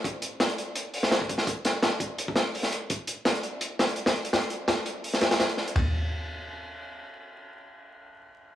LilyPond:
\new DrumStaff \with { instrumentName = "Drums" } \drummode { \time 4/4 \tempo 4 = 168 <hh bd>8 hh8 <hh sn>16 hh16 hh8 hh8 hho16 sn16 <hh sn>16 bd16 <hh bd>16 sn16 | <hh bd>8 <hh sn>8 <hh sn>8 <hh bd>8 hh16 bd16 <hh sn>8 hho16 sn16 hh8 | <hh bd>8 hh8 <hh sn>16 hh16 hh8 hh8 <hh sn>16 hh16 hh16 <hh sn>16 hh16 hh16 | <hh sn>16 hh16 hh8 <hh sn>8 hh8 hho16 sn16 <hh sn>16 <hh sn>16 <hh sn>16 hh16 sn16 hh16 |
<bd rb tomfh>4 r4 r4 r4 | r4 r4 r4 r4 | }